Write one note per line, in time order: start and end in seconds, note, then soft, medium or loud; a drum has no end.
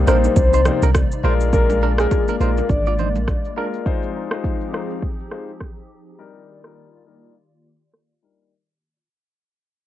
0.00 1.22 C3 medium
0.00 1.22 G3 medium
0.00 1.22 A#3 medium
0.00 1.22 D#4 medium
0.00 3.82 D5 medium
0.07 0.28 A#1 medium
0.07 0.34 A#3 medium
0.07 0.17 D4 medium
0.07 0.34 D#4 medium
0.07 0.34 G4 medium
0.07 0.17 A#4 medium
0.07 0.35 C5 medium
0.07 0.32 C5 medium
0.07 cross-stick medium
0.07 high bongo medium
0.07 shaker medium
0.24 low bongo medium
0.24 shaker medium
0.36 0.69 C2 loud
0.36 0.80 C5 loud
0.36 kick loud
0.36 high bongo medium
0.36 low conga medium
0.36 shaker medium
0.53 0.61 D#4 medium
0.53 0.60 C5 medium
0.53 shaker medium
0.65 0.83 A#3 medium
0.65 0.83 D#4 medium
0.65 0.83 G4 medium
0.65 0.83 C5 medium
0.65 cross-stick medium
0.65 low conga medium
0.65 shaker medium
0.82 1.03 C2 medium
0.82 0.90 D4 medium
0.82 0.89 A#4 medium
0.82 low bongo medium
0.82 shaker medium
0.95 kick medium
0.95 cross-stick loud
0.95 high bongo medium
0.95 shaker medium
1.12 shaker medium
1.23 2.06 A#1 loud
1.23 1.51 G#3 medium
1.23 3.83 G#3 medium
1.23 3.83 A#3 medium
1.23 1.51 D4 medium
1.23 1.51 F4 medium
1.23 1.34 F4 medium
1.23 1.51 A#4 loud
1.23 1.33 C5 medium
1.40 shaker medium
1.53 1.95 G#3 medium
1.53 1.95 D4 medium
1.53 1.95 F4 medium
1.53 1.95 A#4 loud
1.53 1.78 A#4 loud
1.53 kick loud
1.53 low conga medium
1.53 shaker medium
1.70 low bongo medium
1.70 shaker soft
1.83 1.92 D4 medium
1.83 1.91 A#4 medium
1.98 2.37 G#3 medium
1.98 2.06 C4 medium
1.98 2.37 D4 medium
1.98 2.37 F4 medium
1.98 2.24 G#4 medium
1.98 2.06 G#4 medium
1.98 2.38 A#4 medium
1.98 cross-stick loud
1.98 shaker medium
2.11 kick loud
2.11 high bongo medium
2.11 shaker medium
2.28 2.36 D4 medium
2.28 2.35 A#4 medium
2.28 shaker medium
2.40 2.61 A#1 medium
2.40 2.67 G#3 medium
2.40 2.67 D4 medium
2.40 2.50 D#4 medium
2.40 2.67 F4 medium
2.40 2.68 A#4 medium
2.40 2.65 A#4 medium
2.40 2.50 C5 medium
2.40 high bongo medium
2.40 shaker medium
2.57 low bongo medium
2.57 shaker medium
2.69 3.17 G#1 loud
2.69 3.13 D5 loud
2.69 kick loud
2.69 high bongo medium
2.69 low conga medium
2.69 shaker medium
2.86 2.94 F4 medium
2.86 2.93 D5 medium
2.86 shaker medium
2.99 3.08 D#4 medium
2.99 3.08 C5 medium
2.99 low conga medium
2.99 shaker medium
3.15 3.36 A#1 medium
3.15 low bongo medium
3.15 shaker medium
3.28 kick medium
3.28 cross-stick medium
3.28 high bongo medium
3.28 shaker medium
3.45 shaker medium
3.56 3.84 G#3 medium
3.56 3.84 D4 medium
3.56 3.67 D4 medium
3.56 3.84 F4 medium
3.56 3.84 A#4 medium
3.56 3.66 A#4 medium
3.73 shaker soft
3.86 6.17 F3 medium
3.86 4.28 G#3 medium
3.86 6.17 C4 medium
3.86 4.28 D#4 medium
3.86 6.17 D#4 medium
3.86 4.28 F4 medium
3.86 8.48 G4 medium
3.86 6.17 G#4 medium
3.86 4.28 C5 medium
3.86 kick loud
3.86 shaker medium
4.03 shaker soft
4.31 4.70 G#3 medium
4.31 4.70 D#4 medium
4.31 4.70 F4 medium
4.31 4.70 C5 medium
4.31 cross-stick loud
4.31 shaker medium
4.44 kick medium
4.44 shaker medium
4.61 shaker medium
4.73 5.00 G#3 medium
4.73 5.00 D#4 medium
4.73 5.00 F4 medium
4.73 5.01 C5 medium
4.73 cross-stick medium
4.73 shaker medium
4.90 shaker medium
5.02 kick loud
5.02 shaker medium
5.19 shaker medium
5.31 5.49 G#3 medium
5.31 5.49 D#4 medium
5.31 5.49 F4 medium
5.31 5.49 C5 medium
5.31 cross-stick medium
5.31 shaker soft
5.48 shaker soft
5.61 kick medium
5.61 cross-stick loud
5.61 shaker medium
5.78 shaker medium
6.06 shaker soft
6.19 8.50 D#3 medium
6.19 6.61 G3 medium
6.19 8.50 A#3 medium
6.19 6.61 D4 medium
6.19 6.61 D#4 medium
6.19 8.50 F4 medium
6.19 6.61 A#4 medium
6.19 8.50 D5 medium
6.64 7.03 G3 medium
6.64 7.03 D4 medium
6.64 7.03 D#4 medium
6.64 7.03 A#4 medium
6.64 cross-stick loud
7.06 7.33 G3 medium
7.06 7.33 D4 medium
7.06 7.33 D#4 medium
7.06 7.34 A#4 medium
7.94 cross-stick loud
8.22 8.50 G3 medium
8.22 8.50 D4 medium
8.22 8.50 D#4 medium
8.22 8.50 A#4 medium